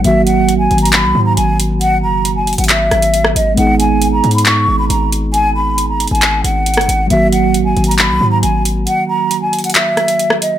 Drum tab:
HH |x-----------x-----------x-----------x---x---x---x-----------------------x-----------x-----------|x-----------------------x-----------x--x--x--x--x-----------x-----x-----x-----------x-----------|x-----------x-----------x-----------x---x---x---x-----------------------x-----------x-----------|x-----------------------x-----------x---x---x---x-----------x-----------x---x---x---x-----------|
CP |------------------------------------------------x-----------------------------------------------|------------------------------------------------x-----------------------------------------------|------------------------------------------------x-----------------------------------------------|------------------------------------------------x-----------------------------------------------|
SD |------------------------------------------------------------------------------------------------|------------------------------------------------------------r-----------------r-----------------|------------------------------------------------------------------------------------------------|------------------------------------------------------------------------------r-----------------|

HH |x-----------x-----------x-----------x---x---x---x-----------------------x-----------x-----------|x-----------------------x-----------x--x--x--x--x-----------x-----x-----x-----------x-----------|
CP |------------------------------------------------x-----------------------------------------------|------------------------------------------------x-----------------------------------------------|
SD |------------------------------------------------------------------------------------------------|------------------------------------------------------------r-----------------r-----------------|